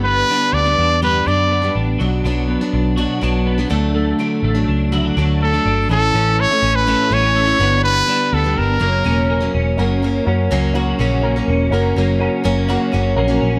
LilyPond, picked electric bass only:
\new Staff \with { instrumentName = "Picked electric bass" } { \clef bass \time 4/4 \key fis \phrygian \tempo 4 = 124 g,,8 r8 d,8 e,4 fis,4 a,,8 | b,,8 b,,8. r16 b,,8. r16 b,,4 d,8~ | d,8 r8 a,,8 cis,4 d,4 g,,8 | a,,8 a,,8. r16 a,,8. r16 a,,4 g,,8~ |
g,,8 r8 d,8 g,,8 fis,,8 e,,4 e,,8 | fis,,4 fis,8 cis,4 ais,,4 e,,8 | fis,,8 fis,,8. r16 fis,,8. r16 fis,,8 ais,,8 ais,,8 | }